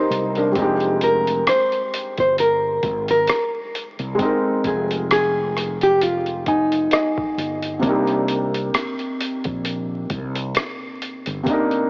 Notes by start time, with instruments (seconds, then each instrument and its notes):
Already playing: felt piano C3 A#3 D#4 G4 C5 D#5, nylon-string guitar A#4
0.10 fretless electric bass C2, closed hi-hat
0.35 felt piano D4 A#4, closed hi-hat
0.52 fretless electric bass F1, felt piano G3 C4, kick, closed hi-hat
0.58 felt piano G#3 D#4 G4
0.80 closed hi-hat
1.01 nylon-string guitar A#4, closed hi-hat
1.27 closed hi-hat
1.47 nylon-string guitar C5, cross-stick, closed hi-hat
1.72 closed hi-hat
1.94 closed hi-hat
2.17 fretless electric bass G1, nylon-string guitar C5, kick, closed hi-hat
2.38 nylon-string guitar A#4, closed hi-hat
2.83 fretless electric bass G#1, kick, closed hi-hat
3.08 nylon-string guitar A#4, closed hi-hat
3.28 cross-stick, closed hi-hat
3.75 closed hi-hat
3.99 fretless electric bass C2, closed hi-hat
4.15 felt piano G#3 C4
4.19 felt piano D#4, kick, closed hi-hat
4.25 felt piano A#4
4.64 fretless electric bass F1, nylon-string guitar G#4, kick, closed hi-hat
4.91 closed hi-hat
5.11 nylon-string guitar G#4, cross-stick, closed hi-hat
5.57 cross-stick, closed hi-hat
5.81 nylon-string guitar G4, closed hi-hat
6.01 nylon-string guitar F4, closed hi-hat
6.26 closed hi-hat
6.46 nylon-string guitar D#4, felt piano G#5, kick, closed hi-hat
6.72 closed hi-hat
6.91 felt piano D#5, cross-stick, closed hi-hat
7.18 kick
7.38 fretless electric bass G1, closed hi-hat
7.63 closed hi-hat
7.79 fretless electric bass C2, felt piano C3 A#3, kick, closed hi-hat
7.84 felt piano D4 D#4
7.89 felt piano G4
8.07 closed hi-hat
8.28 closed hi-hat
8.54 closed hi-hat
8.74 cross-stick, closed hi-hat
8.99 closed hi-hat
9.21 closed hi-hat
9.44 fretless electric bass A#1, kick, closed hi-hat
9.65 closed hi-hat
10.10 fretless electric bass C2, kick, closed hi-hat
10.35 closed hi-hat
10.55 cross-stick, closed hi-hat
11.02 closed hi-hat
11.26 fretless electric bass G1, closed hi-hat
11.43 felt piano C3 A#3, kick, closed hi-hat
11.48 felt piano D4 D#4
11.53 felt piano A#4
11.71 closed hi-hat